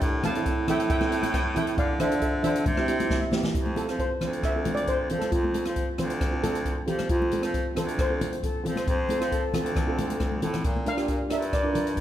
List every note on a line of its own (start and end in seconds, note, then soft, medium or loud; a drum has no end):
0.00 0.23 A2 loud
0.00 0.22 E5 medium
0.00 0.22 G5 loud
0.00 kick loud
0.00 closed hi-hat medium
0.23 0.66 A2 loud
0.23 0.32 C4 medium
0.23 0.32 E4 medium
0.23 0.32 A4 medium
0.23 0.66 F5 medium
0.23 0.66 A5 loud
0.23 cross-stick medium
0.23 closed hi-hat medium
0.23 high conga medium
0.23 low conga medium
0.35 0.56 C4 medium
0.35 0.56 E4 medium
0.35 0.56 A4 medium
0.35 closed hi-hat medium
0.46 kick medium
0.46 closed hi-hat medium
0.68 1.75 A2 loud
0.68 0.88 C4 medium
0.68 0.88 E4 medium
0.68 0.89 A4 medium
0.68 0.90 E5 medium
0.68 0.89 G5 medium
0.68 cross-stick loud
0.68 closed hi-hat medium
0.68 low conga medium
0.80 closed hi-hat medium
0.90 0.98 E5 medium
0.90 0.96 G5 medium
0.90 kick loud
0.90 closed hi-hat medium
0.97 1.07 C4 medium
0.97 1.07 E4 medium
0.97 1.04 G5 medium
0.97 high conga medium
1.02 1.08 A4 medium
1.02 1.11 G5 medium
1.02 cross-stick medium
1.11 1.38 C4 medium
1.11 1.39 E4 medium
1.11 1.39 A4 medium
1.11 1.19 G5 medium
1.11 closed hi-hat medium
1.21 1.27 G5 medium
1.21 closed hi-hat medium
1.21 high conga medium
1.28 1.33 G5 medium
1.34 1.42 G5 medium
1.34 kick medium
1.34 cross-stick medium
1.34 closed hi-hat medium
1.44 1.51 G5 medium
1.54 1.77 C4 medium
1.54 1.78 E4 medium
1.54 1.78 A4 medium
1.54 1.77 E5 medium
1.54 1.79 G5 medium
1.54 closed hi-hat medium
1.54 low conga medium
1.67 closed hi-hat medium
1.78 1.99 D3 medium
1.78 1.99 D5 medium
1.78 2.01 F5 medium
1.78 kick loud
1.78 closed hi-hat medium
1.99 2.42 D3 loud
1.99 2.07 D4 medium
1.99 2.07 F4 medium
1.99 2.07 A4 medium
1.99 2.21 C5 medium
1.99 2.21 E5 medium
1.99 cross-stick medium
1.99 closed hi-hat medium
1.99 low conga medium
2.10 2.31 D4 medium
2.10 2.31 F4 medium
2.10 2.32 A4 medium
2.10 closed hi-hat medium
2.22 2.43 A4 medium
2.22 2.42 E5 medium
2.22 kick medium
2.22 closed hi-hat medium
2.43 2.65 D3 loud
2.43 2.64 D4 medium
2.43 2.64 F4 medium
2.43 2.65 A4 medium
2.43 2.52 C5 medium
2.43 2.51 E5 medium
2.43 closed hi-hat medium
2.43 low conga medium
2.52 2.58 E5 medium
2.52 closed hi-hat medium
2.59 2.66 E5 medium
2.66 3.25 C3 loud
2.66 kick loud
2.66 closed hi-hat medium
2.66 high conga medium
2.66 low conga medium
2.74 2.84 C4 medium
2.74 2.84 E4 medium
2.74 2.80 E5 medium
2.74 cross-stick medium
2.74 high conga medium
2.79 2.85 G4 medium
2.79 2.88 E5 soft
2.87 3.15 C4 medium
2.87 3.15 E4 medium
2.87 3.16 G4 medium
2.87 2.95 E5 medium
2.87 closed hi-hat medium
2.97 3.04 E5 soft
2.97 closed hi-hat medium
2.97 high conga medium
3.05 3.11 E5 medium
3.10 3.19 E5 medium
3.10 kick medium
3.10 snare medium
3.20 3.27 E5 medium
3.20 high conga medium
3.31 3.54 C4 medium
3.31 3.55 E4 medium
3.31 3.55 G4 medium
3.31 snare loud
3.31 low conga medium
3.43 snare medium
3.43 low conga medium
3.54 3.87 F2 medium
3.54 kick loud
3.54 closed hi-hat medium
3.66 high conga medium
3.76 3.84 C4 medium
3.76 3.84 F4 medium
3.76 4.00 A4 medium
3.76 3.84 A4 medium
3.76 closed hi-hat medium
3.76 high conga medium
3.88 4.10 F3 medium
3.88 4.09 C4 medium
3.88 4.09 F4 medium
3.88 4.09 C5 medium
3.88 cross-stick medium
3.88 closed hi-hat medium
3.99 4.45 C5 medium
3.99 kick medium
3.99 closed hi-hat medium
4.21 5.06 D2 medium
4.21 4.42 C4 medium
4.21 4.42 F4 medium
4.21 4.42 C5 medium
4.21 cross-stick medium
4.21 closed hi-hat medium
4.21 low conga medium
4.33 closed hi-hat medium
4.43 4.75 E5 medium
4.43 kick loud
4.43 cross-stick medium
4.43 closed hi-hat medium
4.56 4.62 C4 medium
4.56 4.62 F4 medium
4.56 4.63 A4 medium
4.65 4.92 C4 medium
4.65 4.92 F4 medium
4.65 4.93 A4 medium
4.65 closed hi-hat medium
4.65 high conga medium
4.65 low conga medium
4.75 4.89 D5 loud
4.75 closed hi-hat medium
4.87 5.19 C5 medium
4.87 kick medium
4.87 closed hi-hat medium
5.09 5.31 F3 medium
5.09 5.37 C4 medium
5.09 5.37 F4 medium
5.09 5.38 A4 medium
5.09 closed hi-hat medium
5.09 low conga medium
5.19 5.32 A4 medium
5.19 cross-stick medium
5.19 closed hi-hat medium
5.19 high conga medium
5.31 5.64 F2 medium
5.31 5.73 F4 medium
5.31 kick loud
5.31 closed hi-hat medium
5.44 high conga medium
5.53 5.61 C4 medium
5.53 5.61 F4 medium
5.53 5.62 A4 medium
5.53 closed hi-hat medium
5.53 high conga medium
5.65 5.87 F3 medium
5.65 5.86 C4 medium
5.65 5.86 F4 medium
5.65 5.86 C5 medium
5.65 cross-stick medium
5.65 closed hi-hat medium
5.76 kick medium
5.76 closed hi-hat medium
5.98 6.84 D2 loud
5.98 6.19 C4 medium
5.98 6.19 F4 medium
5.98 6.19 C5 medium
5.98 cross-stick medium
5.98 closed hi-hat medium
5.98 low conga medium
6.10 closed hi-hat medium
6.21 kick loud
6.21 cross-stick medium
6.21 closed hi-hat medium
6.31 6.38 C4 medium
6.31 6.39 F4 medium
6.31 6.39 A4 medium
6.43 6.70 C4 medium
6.43 6.70 F4 medium
6.43 6.89 A4 medium
6.43 6.70 A4 medium
6.43 closed hi-hat medium
6.43 high conga medium
6.43 low conga medium
6.55 closed hi-hat medium
6.65 kick medium
6.65 closed hi-hat medium
6.86 7.09 F3 medium
6.86 7.14 C4 medium
6.86 7.14 F4 medium
6.86 6.98 G4 medium
6.86 7.14 A4 medium
6.86 closed hi-hat medium
6.86 low conga medium
6.99 cross-stick medium
6.99 closed hi-hat medium
6.99 high conga medium
7.09 7.42 F2 medium
7.09 7.79 F4 medium
7.09 kick loud
7.09 closed hi-hat medium
7.22 high conga medium
7.31 7.39 C4 medium
7.31 7.39 F4 medium
7.31 7.39 A4 medium
7.31 closed hi-hat medium
7.31 high conga medium
7.42 7.65 F3 medium
7.42 7.63 C4 medium
7.42 7.63 F4 medium
7.42 7.63 A4 medium
7.42 cross-stick medium
7.42 closed hi-hat medium
7.54 kick medium
7.54 closed hi-hat medium
7.75 8.35 D2 loud
7.75 7.96 C4 medium
7.75 7.96 F4 medium
7.75 8.00 A4 medium
7.75 7.97 C5 medium
7.75 cross-stick medium
7.75 closed hi-hat medium
7.75 low conga medium
7.88 closed hi-hat medium
7.99 8.62 C5 medium
7.99 kick loud
7.99 cross-stick medium
7.99 closed hi-hat medium
8.10 8.16 C4 medium
8.10 8.17 F4 medium
8.10 8.17 A4 medium
8.20 8.47 C4 medium
8.20 8.48 F4 medium
8.20 8.48 C5 medium
8.20 closed hi-hat medium
8.20 high conga medium
8.20 low conga medium
8.33 closed hi-hat medium
8.43 8.74 A4 medium
8.43 kick medium
8.43 closed hi-hat medium
8.64 8.86 F3 medium
8.64 8.91 C4 medium
8.64 8.91 F4 medium
8.64 8.92 A4 medium
8.64 closed hi-hat medium
8.64 low conga medium
8.76 8.86 C5 medium
8.76 cross-stick medium
8.76 closed hi-hat medium
8.76 high conga medium
8.87 9.20 F2 medium
8.87 9.33 C5 loud
8.87 kick loud
8.87 closed hi-hat medium
9.09 9.16 C4 medium
9.09 9.17 F4 medium
9.09 9.17 A4 medium
9.09 closed hi-hat medium
9.09 high conga medium
9.20 9.42 F3 medium
9.20 9.40 C4 medium
9.20 9.41 F4 medium
9.20 9.41 C5 medium
9.20 cross-stick medium
9.20 closed hi-hat medium
9.32 10.20 A4 medium
9.32 kick medium
9.32 closed hi-hat medium
9.54 10.39 D2 loud
9.54 9.74 C4 medium
9.54 9.74 F4 medium
9.54 9.75 A4 medium
9.54 cross-stick medium
9.54 closed hi-hat medium
9.54 high conga medium
9.54 low conga medium
9.66 closed hi-hat medium
9.75 kick loud
9.75 cross-stick medium
9.75 closed hi-hat medium
9.75 low conga medium
9.87 9.94 C4 medium
9.87 9.94 F4 medium
9.87 9.95 A4 medium
9.98 10.25 C4 medium
9.98 10.25 F4 medium
9.98 10.26 A4 medium
9.98 closed hi-hat medium
9.98 high conga medium
9.98 low conga medium
10.10 closed hi-hat medium
10.10 high conga medium
10.20 kick medium
10.20 cross-stick medium
10.20 closed hi-hat medium
10.20 high conga medium
10.32 high conga medium
10.41 10.64 A2 medium
10.41 10.64 C4 medium
10.41 10.65 F4 medium
10.41 10.65 A4 medium
10.41 closed hi-hat medium
10.41 low conga medium
10.54 cross-stick medium
10.54 closed hi-hat medium
10.54 low conga medium
10.64 10.97 A#2 medium
10.64 kick loud
10.64 closed hi-hat medium
10.76 high conga medium
10.86 10.93 D4 medium
10.86 10.94 F4 medium
10.86 10.94 A#4 medium
10.86 11.33 F5 loud
10.86 closed hi-hat medium
10.86 high conga medium
10.96 11.20 A#2 medium
10.96 11.17 D4 medium
10.96 11.18 F4 medium
10.96 11.18 G4 medium
10.96 cross-stick medium
10.96 closed hi-hat medium
11.08 kick medium
11.08 closed hi-hat medium
11.30 12.01 G2 loud
11.30 11.50 D4 medium
11.30 11.51 F4 medium
11.30 11.51 A#4 medium
11.30 11.55 E5 medium
11.30 cross-stick medium
11.30 closed hi-hat medium
11.42 closed hi-hat medium
11.53 12.01 D5 medium
11.53 kick loud
11.53 cross-stick medium
11.53 closed hi-hat medium
11.63 11.71 D4 medium
11.63 11.71 F4 medium
11.63 11.71 A#4 medium
11.73 12.01 D4 medium
11.73 12.01 F4 medium
11.73 12.01 A#4 medium
11.73 closed hi-hat medium
11.73 low conga medium
11.87 closed hi-hat medium
11.97 kick medium
11.97 closed hi-hat medium